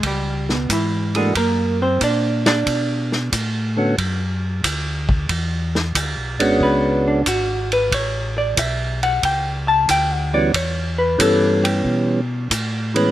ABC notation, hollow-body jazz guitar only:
X:1
M:4/4
L:1/8
Q:"Swing" 1/4=92
K:Amix
V:1 name="Hollow-body jazz guitar"
[G,G] [B,,B,] [E,E] [^G,^G] [^A,^A] [=C=c] [Dd] [Dd]- | [Dd]2 z6 | z4 B D F B | c d e f g a (3g f d |
c B A G2 z3 |]